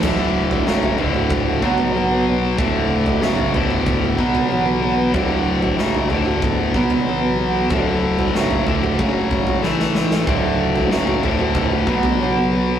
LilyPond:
<<
  \new Staff \with { instrumentName = "Cello" } { \clef bass \time 4/4 \key d \major \tempo 4 = 94 fis4 a8 a4. fis4 | a4 b8 b4. e4 | fis4 a4 b4 e4 | fis8. g16 a2 e4 |
fis4 a8 a4. fis4 | }
  \new Staff \with { instrumentName = "Steel-string acoustic guitar" } { \clef bass \time 4/4 \key d \major <d, a, d a fis'>8. <a fis'>16 <d, a, a fis'>16 <d a fis'>8 <d a fis'>8 <d a fis'>16 <b, fis b>8 <b, fis b>16 <fis b>16 <b, fis b>16 <fis b>16 | <d, a, d a fis'>8. <a fis'>16 <d, a, a fis'>16 <d a fis'>8 <d a fis'>8 <d a fis'>16 <b, fis b>8 <b, fis b>16 <fis b>16 <b, fis b>16 <fis b>16 | <d, a, d a fis'>8. <a fis'>16 <d, a, a fis'>16 <d a fis'>8 <d a fis'>8 <d a fis'>16 <b, fis b>8 <b, fis b>16 <fis b>16 <b, fis b>16 <fis b>16 | <d, a, d a fis'>8. <a fis'>16 <d, a, a fis'>16 <d a fis'>8 <d a fis'>16 <fis, cis fis>16 <cis fis>16 <fis, cis fis>8 <a, e a>16 <e a>16 <a, e a>16 <e a>16 |
<d, a, d a fis'>8. <a fis'>16 <d, a, a fis'>16 <d a fis'>8 <d a fis'>8 <d a fis'>16 <b, fis b>8 <b, fis b>16 <fis b>16 <b, fis b>16 <fis b>16 | }
  \new Staff \with { instrumentName = "Distorted electric guitar" } { \clef bass \time 4/4 \key d \major <d, a, d>4 <fis, cis fis>8 <d, a, d>4 <b, fis b>4. | <d, a, d>4 <fis, cis fis>8 <d, a, d>4 <b, fis b>4. | <d, a, d>4 <fis, cis fis>8 <d, a, d>4 <b, fis b>4. | <d, a, d>4 <fis, cis fis>8 <d, a, d>8 <fis, cis fis>4 <a, e a>4 |
<d, a, d>4 <fis, cis fis>8 <d, a, d>4 <b, fis b>4. | }
  \new Staff \with { instrumentName = "Fingered electric bass" } { \clef bass \time 4/4 \key d \major d,,4 fis,,8 d,,4 b,,4. | d,,4 fis,,8 d,,4 b,,4. | d,,4 fis,,8 d,,4 b,,4. | d,,4 fis,,8 d,,8 fis,,4 a,,4 |
d,,4 fis,,8 d,,4 b,,4. | }
  \new DrumStaff \with { instrumentName = "Drums" } \drummode { \time 4/4 <cymc bd tomfh>8. tomfh16 sn16 tomfh16 tomfh16 toml16 <bd tomfh>8 bd16 tomfh16 r4 | <bd tomfh>8. tomfh16 sn16 tomfh16 tomfh16 toml16 <bd tomfh>8 bd16 tomfh16 r4 | <bd tomfh>8. tomfh16 sn16 tomfh16 tomfh16 toml16 <bd tomfh>8 bd16 tomfh16 r4 | <bd tomfh>8. tomfh16 sn16 tomfh16 tomfh16 toml16 <bd tomfh>8 <bd tomfh>16 tomfh16 sn16 sn16 sn16 sn16 |
<bd tomfh>8. tomfh16 sn16 tomfh16 tomfh16 toml16 <bd tomfh>8 bd16 tomfh16 r4 | }
>>